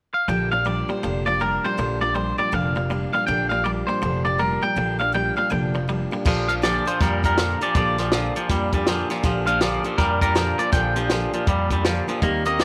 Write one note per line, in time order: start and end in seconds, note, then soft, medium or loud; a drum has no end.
0.14 0.28 F5 medium
0.28 0.81 A#1 medium
0.28 0.52 A#2 medium
0.28 0.49 A#2 medium
0.28 0.52 D3 medium
0.28 0.50 F3 medium
0.28 0.52 F3 medium
0.28 0.52 A#3 medium
0.28 0.51 D4 medium
0.28 0.50 G4 medium
0.28 0.51 G5 loud
0.52 0.65 A#2 medium
0.52 0.65 F3 medium
0.52 0.64 F3 soft
0.52 0.65 A#3 soft
0.52 0.65 D4 medium
0.52 0.65 G4 medium
0.52 0.66 F5 medium
0.65 0.87 A#2 loud
0.65 0.89 F3 medium
0.65 0.87 G3 medium
0.65 0.89 A#3 medium
0.65 0.88 D4 medium
0.65 0.87 G4 medium
0.65 0.89 D5 loud
0.88 1.02 A#2 medium
0.88 1.02 F3 soft
0.88 1.02 G3 medium
0.88 1.03 A#3 soft
0.88 1.03 D4 soft
0.88 1.03 G4 soft
0.88 1.26 C5 medium
1.03 1.56 F1 medium
1.03 1.26 A#2 medium
1.03 1.24 A#2 medium
1.03 1.26 D3 medium
1.03 1.27 F3 medium
1.03 1.25 F3 medium
1.03 1.26 A#3 medium
1.03 1.25 D4 medium
1.03 1.25 G4 medium
1.26 1.39 A#2 medium
1.26 1.40 F3 medium
1.26 1.39 F3 soft
1.26 1.40 A#3 soft
1.26 1.41 D4 soft
1.26 1.40 G4 medium
1.26 1.41 D5 medium
1.40 1.62 A#2 medium
1.40 1.63 F3 medium
1.40 1.62 G3 medium
1.40 1.64 A#3 medium
1.40 1.64 D4 medium
1.40 1.63 G4 medium
1.40 1.65 A#4 medium
1.64 1.77 A#2 medium
1.64 1.77 F3 soft
1.64 1.77 G3 medium
1.64 1.77 A#3 soft
1.64 1.77 D4 soft
1.64 1.78 G4 soft
1.64 1.99 C5 medium
1.77 2.30 A#1 medium
1.77 2.01 A#2 medium
1.77 1.99 A#2 medium
1.77 2.01 D3 medium
1.77 2.01 F3 medium
1.77 2.00 F3 medium
1.77 2.01 A#3 medium
1.77 2.01 D4 medium
1.77 2.00 G4 medium
2.01 2.14 A#2 medium
2.01 2.14 F3 medium
2.01 2.13 F3 soft
2.01 2.14 A#3 medium
2.01 2.14 D4 medium
2.01 2.15 G4 medium
2.01 2.15 D5 medium
2.14 2.36 A#2 medium
2.14 2.38 F3 medium
2.14 2.36 G3 loud
2.14 2.38 A#3 medium
2.14 2.37 D4 medium
2.14 2.37 G4 medium
2.14 2.38 C5 medium
2.38 2.52 A#2 medium
2.38 2.51 F3 soft
2.38 2.52 G3 medium
2.38 2.51 A#3 soft
2.38 2.51 D4 soft
2.38 2.52 G4 soft
2.38 2.54 D5 medium
2.52 3.05 F1 medium
2.52 2.75 A#2 medium
2.52 2.74 A#2 medium
2.52 2.75 D3 medium
2.52 2.76 F3 medium
2.52 2.74 F3 medium
2.52 2.75 A#3 medium
2.52 2.75 D4 medium
2.52 2.74 G4 medium
2.52 3.12 F5 loud
2.75 2.89 A#2 medium
2.75 2.89 F3 medium
2.75 2.88 F3 soft
2.75 2.89 A#3 soft
2.75 2.90 D4 medium
2.75 2.90 G4 medium
2.90 3.11 A#2 medium
2.90 3.13 F3 medium
2.90 3.11 G3 medium
2.90 3.13 A#3 medium
2.90 3.13 D4 medium
2.90 3.12 G4 medium
3.13 3.26 A#2 medium
3.13 3.27 F3 soft
3.13 3.27 G3 medium
3.13 3.27 A#3 soft
3.13 3.27 D4 soft
3.13 3.27 G4 medium
3.13 3.26 F5 medium
3.27 3.80 A#1 loud
3.27 3.50 A#2 medium
3.27 3.49 A#2 medium
3.27 3.51 D3 medium
3.27 3.51 F3 medium
3.27 3.49 F3 medium
3.27 3.50 A#3 medium
3.27 3.50 D4 medium
3.27 3.49 G4 medium
3.27 3.49 G5 loud
3.49 3.64 A#2 medium
3.49 3.64 F3 medium
3.49 3.63 F3 soft
3.49 3.64 A#3 soft
3.49 3.65 D4 medium
3.49 3.64 G4 medium
3.49 3.64 F5 medium
3.64 3.86 A#2 medium
3.64 3.88 F3 medium
3.64 3.86 G3 medium
3.64 3.88 A#3 medium
3.64 3.88 D4 medium
3.64 3.87 G4 medium
3.64 3.70 D5 medium
3.87 4.01 A#2 medium
3.87 4.01 F3 soft
3.87 4.01 G3 medium
3.87 4.01 A#3 soft
3.87 4.02 D4 soft
3.87 4.02 G4 medium
3.87 4.24 C5 medium
4.02 4.54 F1 medium
4.02 4.25 A#2 medium
4.02 4.23 A#2 medium
4.02 4.25 D3 medium
4.02 4.25 F3 medium
4.02 4.23 F3 medium
4.02 4.25 A#3 medium
4.02 4.24 D4 medium
4.02 4.23 G4 medium
4.25 4.38 A#2 medium
4.25 4.38 F3 medium
4.25 4.37 F3 soft
4.25 4.38 A#3 soft
4.25 4.39 D4 soft
4.25 4.39 G4 medium
4.25 4.39 D5 medium
4.38 4.60 A#2 medium
4.38 4.62 F3 medium
4.38 4.60 G3 medium
4.38 4.62 A#3 medium
4.38 4.61 D4 medium
4.38 4.60 G4 medium
4.38 4.63 A#4 medium
4.62 4.75 A#2 medium
4.62 4.75 F3 soft
4.62 4.76 G3 medium
4.62 4.76 A#3 soft
4.62 4.76 D4 soft
4.62 4.76 G4 soft
4.62 4.99 G5 medium
4.76 5.29 A#1 medium
4.76 4.99 A#2 medium
4.76 4.98 A#2 medium
4.76 5.00 D3 medium
4.76 4.99 F3 medium
4.76 4.98 F3 medium
4.76 4.99 A#3 medium
4.76 4.98 D4 medium
4.76 4.98 G4 medium
4.99 5.13 A#2 medium
4.99 5.11 F3 medium
4.99 5.13 F3 medium
4.99 5.12 A#3 medium
4.99 5.13 D4 medium
4.99 5.13 G4 medium
4.99 5.14 F5 medium
5.12 5.35 A#2 medium
5.12 5.36 F3 medium
5.12 5.36 G3 loud
5.12 5.36 A#3 medium
5.12 5.35 D4 medium
5.12 5.35 G4 medium
5.12 5.36 G5 medium
5.36 5.50 A#2 medium
5.36 5.49 F3 soft
5.36 5.50 G3 medium
5.36 5.49 A#3 soft
5.36 5.50 D4 soft
5.36 5.50 G4 soft
5.36 5.50 F5 medium
5.50 6.04 F1 medium
5.50 5.74 A#2 medium
5.50 5.72 A#2 medium
5.50 5.74 D3 medium
5.50 5.74 F3 medium
5.50 5.73 F3 medium
5.50 5.74 A#3 medium
5.50 5.74 D4 medium
5.50 5.73 G4 medium
5.50 6.11 G5 medium
5.74 5.87 A#2 medium
5.74 5.88 F3 medium
5.74 5.86 F3 soft
5.74 5.88 A#3 soft
5.74 5.88 D4 soft
5.74 5.88 G4 medium
5.88 6.10 A#2 medium
5.88 6.11 F3 medium
5.88 6.10 G3 medium
5.88 6.12 A#3 medium
5.88 6.11 D4 medium
5.88 6.10 G4 medium
6.11 6.25 A#2 medium
6.11 6.24 F3 medium
6.11 6.25 G3 medium
6.11 6.25 A#3 medium
6.11 6.25 D4 medium
6.11 6.25 G4 medium
6.25 6.78 A#1 medium
6.25 6.49 A#2 medium
6.25 6.47 A#2 medium
6.25 6.49 D3 medium
6.25 6.49 F3 loud
6.25 6.47 F3 medium
6.25 6.49 A#3 medium
6.25 6.48 D4 loud
6.25 6.47 G4 loud
6.25 kick loud
6.25 crash loud
6.48 6.62 A#2 medium
6.48 6.62 F3 medium
6.48 6.61 F3 soft
6.48 6.62 A#3 medium
6.48 6.62 D4 medium
6.48 6.62 G4 medium
6.48 6.54 F5 loud
6.48 closed hi-hat medium
6.62 6.86 A#2 medium
6.62 6.84 A#2 medium
6.62 6.86 D3 medium
6.62 6.86 F3 medium
6.62 6.85 F3 loud
6.62 6.85 A#3 medium
6.62 6.85 D4 medium
6.62 6.84 G4 medium
6.62 6.87 D5 medium
6.62 snare loud
6.62 closed hi-hat medium
6.85 6.99 A#2 medium
6.85 6.99 F3 soft
6.85 7.00 F3 medium
6.85 7.00 A#3 soft
6.85 7.00 D4 soft
6.85 7.00 G4 medium
6.85 7.02 C5 medium
6.85 closed hi-hat medium
7.00 7.53 F2 medium
7.00 7.22 A#2 medium
7.00 7.23 F3 medium
7.00 7.22 G3 medium
7.00 7.23 A#3 medium
7.00 7.22 D4 medium
7.00 7.22 G4 medium
7.00 7.24 A#4 medium
7.00 kick loud
7.00 snare soft
7.00 closed hi-hat medium
7.23 7.36 A#2 medium
7.23 7.37 F3 soft
7.23 7.37 G3 medium
7.23 7.37 A#3 soft
7.23 7.37 D4 soft
7.23 7.37 G4 medium
7.23 7.63 A#4 medium
7.23 kick medium
7.23 closed hi-hat medium
7.37 7.61 A#2 medium
7.37 7.59 A#2 medium
7.37 7.61 D3 medium
7.37 7.61 F3 medium
7.37 7.59 F3 medium
7.37 7.61 A#3 medium
7.37 7.60 D4 medium
7.37 7.60 G4 medium
7.37 snare loud
7.37 closed hi-hat medium
7.61 7.74 A#2 medium
7.61 7.74 F3 soft
7.61 7.74 F3 medium
7.61 7.74 A#3 soft
7.61 7.75 D4 soft
7.61 7.75 G4 medium
7.61 7.76 D5 medium
7.61 closed hi-hat medium
7.75 8.27 A#1 loud
7.75 7.98 A#2 medium
7.75 7.96 A#2 medium
7.75 7.98 D3 medium
7.75 7.98 F3 medium
7.75 7.96 F3 medium
7.75 7.98 A#3 medium
7.75 7.98 D4 medium
7.75 7.97 G4 medium
7.75 9.07 D5 medium
7.75 kick loud
7.75 closed hi-hat medium
7.98 8.11 A#2 medium
7.98 8.11 F3 medium
7.98 8.12 F3 soft
7.98 8.12 A#3 medium
7.98 8.12 D4 medium
7.98 8.12 G4 medium
7.98 snare soft
7.98 closed hi-hat medium
8.12 8.35 A#2 medium
8.12 8.33 A#2 medium
8.12 8.36 D3 medium
8.12 8.36 F3 medium
8.12 8.33 F3 loud
8.12 8.36 A#3 medium
8.12 8.35 D4 medium
8.12 8.34 G4 loud
8.12 snare loud
8.12 closed hi-hat medium
8.35 8.48 A#2 medium
8.35 8.48 F3 medium
8.35 8.48 F3 soft
8.35 8.49 A#3 soft
8.35 8.49 D4 soft
8.35 8.49 G4 medium
8.35 closed hi-hat medium
8.49 9.02 F2 medium
8.49 8.71 A#2 medium
8.49 8.72 F3 medium
8.49 8.71 G3 medium
8.49 8.73 A#3 medium
8.49 8.72 D4 medium
8.49 8.72 G4 medium
8.49 kick loud
8.49 snare soft
8.49 closed hi-hat medium
8.72 8.86 A#2 medium
8.72 8.87 F3 soft
8.72 8.86 G3 medium
8.72 8.87 A#3 medium
8.72 8.87 D4 medium
8.72 8.87 G4 medium
8.72 kick medium
8.72 closed hi-hat medium
8.87 9.10 A#2 medium
8.87 9.08 A#2 medium
8.87 9.10 D3 loud
8.87 9.10 F3 loud
8.87 9.08 F3 medium
8.87 9.10 A#3 medium
8.87 9.10 D4 loud
8.87 9.09 G4 loud
8.87 snare loud
8.87 closed hi-hat medium
9.10 9.23 A#2 medium
9.10 9.23 F3 medium
9.10 9.23 A#3 medium
9.10 9.23 D4 medium
9.10 9.23 G4 medium
9.10 snare soft
9.10 closed hi-hat medium
9.23 9.76 A#1 medium
9.23 9.47 A#2 medium
9.23 9.45 A#2 medium
9.23 9.47 D3 loud
9.23 9.47 F3 loud
9.23 9.46 F3 medium
9.23 9.47 A#3 medium
9.23 9.46 D4 medium
9.23 9.45 G4 loud
9.23 kick loud
9.23 snare soft
9.23 closed hi-hat medium
9.46 9.60 A#2 medium
9.46 9.60 F3 medium
9.46 9.60 A#3 medium
9.46 9.61 D4 medium
9.46 9.61 G4 medium
9.46 9.61 F5 medium
9.46 closed hi-hat medium
9.61 9.84 A#2 medium
9.61 9.82 A#2 medium
9.61 9.84 D3 medium
9.61 9.84 F3 medium
9.61 9.83 F3 loud
9.61 9.84 A#3 medium
9.61 9.83 D4 medium
9.61 9.82 G4 medium
9.61 9.84 D5 medium
9.61 snare medium
9.61 closed hi-hat medium
9.83 9.97 A#2 medium
9.83 9.97 F3 soft
9.83 9.98 F3 medium
9.83 9.97 A#3 soft
9.83 9.98 D4 soft
9.83 9.98 G4 soft
9.83 9.99 C5 medium
9.83 closed hi-hat medium
9.98 10.51 F2 medium
9.98 10.19 A#2 medium
9.98 10.21 F3 medium
9.98 10.19 G3 medium
9.98 10.22 A#3 medium
9.98 10.21 D4 medium
9.98 10.20 G4 medium
9.98 10.21 A#4 medium
9.98 kick loud
9.98 snare soft
9.98 closed hi-hat medium
10.21 10.34 A#2 medium
10.21 10.34 F3 soft
10.21 10.35 G3 medium
10.21 10.35 A#3 medium
10.21 10.35 D4 medium
10.21 10.35 G4 medium
10.21 10.60 A#4 medium
10.21 kick medium
10.21 closed hi-hat medium
10.35 10.58 A#2 medium
10.35 10.56 A#2 medium
10.35 10.58 D3 medium
10.35 10.59 F3 medium
10.35 10.56 F3 medium
10.35 10.58 A#3 medium
10.35 10.58 D4 medium
10.35 10.57 G4 medium
10.35 snare loud
10.35 closed hi-hat medium
10.58 10.71 A#2 medium
10.58 10.71 F3 medium
10.58 10.72 F3 soft
10.58 10.72 A#3 soft
10.58 10.73 D4 soft
10.58 10.72 D5 medium
10.58 closed hi-hat medium
10.72 11.25 A#1 loud
10.72 10.93 A#2 medium
10.72 10.96 A#2 medium
10.72 10.96 D3 medium
10.72 10.94 F3 loud
10.72 10.96 F3 medium
10.72 10.96 A#3 medium
10.72 10.95 D4 medium
10.72 10.95 G4 medium
10.72 12.03 G5 loud
10.72 kick loud
10.72 snare soft
10.72 closed hi-hat medium
10.96 11.09 A#2 medium
10.96 11.09 F3 medium
10.96 11.09 F3 soft
10.96 11.09 A#3 medium
10.96 11.10 D4 medium
10.96 11.10 G4 medium
10.96 closed hi-hat medium
11.10 11.33 A#2 medium
11.10 11.31 A#2 medium
11.10 11.33 D3 medium
11.10 11.33 F3 medium
11.10 11.31 F3 loud
11.10 11.33 A#3 medium
11.10 11.33 D4 medium
11.10 11.32 G4 medium
11.10 snare loud
11.10 closed hi-hat medium
11.33 11.46 A#2 medium
11.33 11.46 F3 medium
11.33 11.46 F3 soft
11.33 11.47 A#3 soft
11.33 11.47 D4 medium
11.33 11.47 G4 medium
11.33 closed hi-hat medium
11.47 11.99 F2 medium
11.47 11.69 A#2 medium
11.47 11.70 F3 medium
11.47 11.69 G3 loud
11.47 11.71 A#3 medium
11.47 11.70 D4 medium
11.47 11.70 G4 medium
11.47 kick loud
11.47 closed hi-hat medium
11.71 11.84 A#2 medium
11.71 11.84 F3 medium
11.71 11.84 G3 medium
11.71 11.84 A#3 medium
11.71 11.85 D4 medium
11.71 11.85 G4 medium
11.71 kick medium
11.71 closed hi-hat medium
11.85 12.08 A#2 medium
11.85 12.05 A#2 medium
11.85 12.08 D3 medium
11.85 12.08 F3 medium
11.85 12.06 F3 medium
11.85 12.07 A#3 medium
11.85 12.07 D4 loud
11.85 12.06 G4 medium
11.85 snare loud
11.85 closed hi-hat medium
12.08 12.21 A#2 medium
12.08 12.22 F3 soft
12.08 12.21 F3 medium
12.08 12.22 A#3 medium
12.08 12.22 D4 soft
12.08 12.22 G4 medium
12.08 closed hi-hat medium
12.22 12.64 D#2 medium
12.22 12.45 D#3 medium
12.22 12.43 D#3 medium
12.22 12.45 G3 medium
12.22 12.43 A#3 loud
12.22 12.45 C4 medium
12.22 12.45 G4 medium
12.22 12.44 A#4 medium
12.22 kick loud
12.22 closed hi-hat medium
12.45 12.58 D#3 medium
12.45 12.58 A#3 medium
12.45 12.59 C4 medium
12.45 12.59 G4 medium
12.45 12.59 A#4 medium
12.45 12.60 D#5 loud
12.45 closed hi-hat medium
12.59 12.64 D#3 medium
12.59 12.64 G3 medium
12.59 12.64 A#3 loud
12.59 12.64 C4 medium
12.59 12.64 G4 medium
12.59 12.64 A#4 medium
12.59 snare medium
12.59 closed hi-hat medium